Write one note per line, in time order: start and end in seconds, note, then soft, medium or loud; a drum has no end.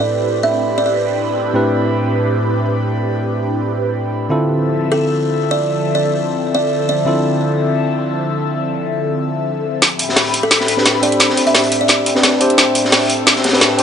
0.00 1.52 A2 medium
0.00 4.27 A2 medium
0.00 1.52 C4 medium
0.00 4.26 C4 medium
0.00 1.53 D4 medium
0.00 4.27 D4 medium
0.00 1.53 E4 medium
0.00 4.27 E4 medium
0.00 1.53 G4 medium
0.00 4.27 G4 medium
0.00 1.53 B4 medium
0.00 4.27 B4 medium
0.00 0.20 D5 medium
0.43 0.69 E5 medium
0.78 0.83 D5 medium
0.86 0.92 D5 medium
1.54 4.28 A2 medium
1.54 4.28 C4 medium
1.54 4.29 D4 medium
1.54 4.29 E4 medium
1.54 4.29 G4 medium
1.54 4.29 B4 medium
4.29 7.04 D3 medium
4.29 9.78 D3 medium
4.29 9.78 F3 medium
4.29 7.04 C4 medium
4.29 9.78 C4 medium
4.29 7.04 E4 medium
4.29 7.05 F4 medium
4.29 9.78 A4 medium
4.29 7.05 A4 medium
4.29 9.78 E5 medium
4.92 5.12 A4 medium
5.51 5.72 D5 medium
5.95 6.15 D5 medium
6.55 6.81 D5 medium
6.89 7.24 D5 medium
7.05 9.80 D3 medium
7.05 9.80 C4 medium
7.05 9.80 E4 medium
7.05 9.81 F4 medium
7.05 9.81 A4 medium
9.82 13.83 A2 medium
9.82 13.83 C4 medium
9.82 13.83 D4 medium
9.82 13.83 G4 medium
9.82 13.83 E5 medium
9.82 12.56 B5 medium
9.82 snare soft
9.82 closed hi-hat medium
9.99 closed hi-hat medium
10.09 snare soft
10.16 snare loud
10.16 snare soft
10.16 closed hi-hat medium
10.16 open hi-hat medium
10.34 closed hi-hat medium
10.43 10.64 A4 medium
10.51 snare soft
10.51 closed hi-hat loud
10.51 closed hi-hat medium
10.60 snare soft
10.68 closed hi-hat medium
10.77 11.00 C4 medium
10.77 11.01 D4 medium
10.77 11.01 G4 medium
10.77 11.01 B4 medium
10.77 snare soft
10.85 snare medium
10.85 snare loud
10.85 closed hi-hat medium
11.02 12.13 C4 medium
11.02 12.13 D4 medium
11.02 12.14 G4 medium
11.02 12.14 C5 medium
11.02 11.24 D5 medium
11.02 closed hi-hat medium
11.12 closed hi-hat soft
11.20 snare soft
11.20 closed hi-hat medium
11.30 snare soft
11.37 closed hi-hat medium
11.47 11.72 E5 medium
11.47 closed hi-hat soft
11.54 snare loud
11.54 snare medium
11.54 closed hi-hat medium
11.64 closed hi-hat soft
11.72 closed hi-hat medium
11.81 11.86 D5 medium
11.88 11.95 D5 medium
11.88 snare medium
11.88 closed hi-hat medium
12.06 closed hi-hat medium
12.15 12.39 C4 medium
12.15 12.39 D4 medium
12.15 12.39 G4 medium
12.15 12.39 B4 medium
12.15 snare soft
12.23 snare loud
12.23 snare medium
12.23 closed hi-hat medium
12.40 13.51 C4 medium
12.40 13.51 D4 medium
12.40 13.52 G4 medium
12.40 13.52 C5 medium
12.40 closed hi-hat medium
12.50 closed hi-hat soft
12.58 13.83 A4 medium
12.58 snare medium
12.58 closed hi-hat medium
12.75 closed hi-hat medium
12.85 snare soft
12.92 snare medium
12.92 snare loud
12.92 closed hi-hat medium
12.92 open hi-hat medium
13.10 closed hi-hat medium
13.27 snare medium
13.27 closed hi-hat medium
13.36 snare soft
13.44 snare medium
13.44 closed hi-hat medium
13.44 open hi-hat medium
13.48 snare medium
13.48 open hi-hat medium
13.53 13.76 C4 medium
13.53 13.77 D4 medium
13.53 13.77 G4 medium
13.53 13.77 B4 medium
13.53 snare loud
13.53 open hi-hat medium
13.61 snare medium
13.61 snare loud
13.61 closed hi-hat medium
13.78 13.83 C4 medium
13.78 13.83 D4 medium
13.78 13.83 G4 medium
13.78 closed hi-hat medium